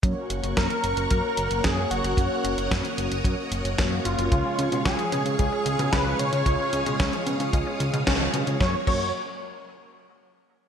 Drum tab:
CC |----------------|----------------|----------------|----------------|
HH |x-xxxxxxx-xxx-xx|x-xxxxxxx-xxx-xx|x-xxxxxxx-xxx-xx|x-xxxxxxx-xxx-xx|
SD |----o-------o---|----o-------o---|----o-------o---|----o-------o---|
BD |o---o---o---o---|o---o---o---o---|o---o---o---o---|o---o---o---o---|

CC |--x-------------|
HH |----------------|
SD |o---------------|
BD |o-o-------------|